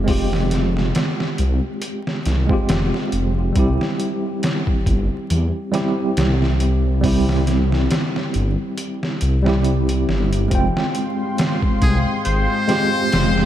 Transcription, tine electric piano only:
0.00 0.04 G#3 medium
0.00 2.42 G#3 medium
0.00 0.06 C4 medium
0.00 0.08 F4 medium
0.00 0.11 G4 medium
0.06 2.43 C4 medium
0.06 2.44 F4 medium
0.11 2.45 G4 medium
2.47 3.50 G#3 medium
2.47 3.51 C4 medium
2.51 3.52 F4 medium
2.51 3.53 G4 medium
3.52 5.67 G3 medium
3.52 5.68 C4 medium
3.57 5.69 E4 medium
3.57 5.70 G4 medium
5.72 5.94 G3 medium
5.72 5.94 C4 medium
5.72 5.95 E4 medium
5.72 5.95 G4 medium
7.01 9.38 G3 medium
7.01 9.39 C4 medium
7.06 9.41 E4 medium
7.06 9.42 G4 medium
9.43 10.46 G3 medium
9.43 10.47 C4 medium
9.47 10.48 E4 medium
9.47 10.49 G4 medium
10.48 12.63 G#3 medium
10.48 12.64 C4 medium
10.53 12.65 F4 medium
10.53 12.66 G5 medium
12.68 12.89 G#3 medium
12.68 12.90 C4 medium
12.68 12.90 F4 medium
12.68 12.91 G4 medium

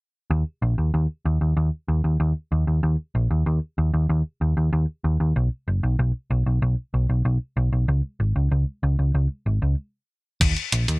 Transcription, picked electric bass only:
0.30 0.42 D#2 medium
0.62 0.74 A#1 medium
0.78 0.90 D#2 medium
0.94 1.06 D#2 medium
1.25 1.37 D#2 medium
1.41 1.53 D#2 medium
1.57 1.69 D#2 medium
1.88 2.00 D#2 medium
2.04 2.16 D#2 medium
2.20 2.32 D#2 medium
2.52 2.63 D#2 medium
2.67 2.79 D#2 medium
2.83 2.95 D#2 medium
3.15 3.27 A#1 medium
3.31 3.42 D#2 medium
3.46 3.58 D#2 medium
3.78 3.90 D#2 medium
3.94 4.05 D#2 medium
4.09 4.21 D#2 medium
4.41 4.53 D#2 medium
4.57 4.69 D#2 medium
4.73 4.84 D#2 medium
5.04 5.16 D#2 medium
5.20 5.32 D#2 medium
5.36 5.48 B1 medium
5.68 5.79 F#1 medium
5.83 5.95 B1 medium
5.99 6.11 B1 medium
6.30 6.42 B1 medium
6.46 6.58 B1 medium
6.62 6.74 B1 medium
6.94 7.06 B1 medium
7.09 7.21 B1 medium
7.25 7.37 B1 medium
7.57 7.69 B1 medium
7.72 7.84 B1 medium
7.88 8.00 C#2 medium
8.20 8.32 G#1 medium
8.36 8.48 C#2 medium
8.51 8.63 C#2 medium
8.83 8.95 C#2 medium
8.99 9.11 C#2 medium
9.14 9.26 C#2 medium
9.46 9.58 G#1 medium
9.62 9.74 C#2 medium
10.41 10.53 D#2 medium
10.73 10.84 A#1 medium
10.88 10.99 D#2 medium

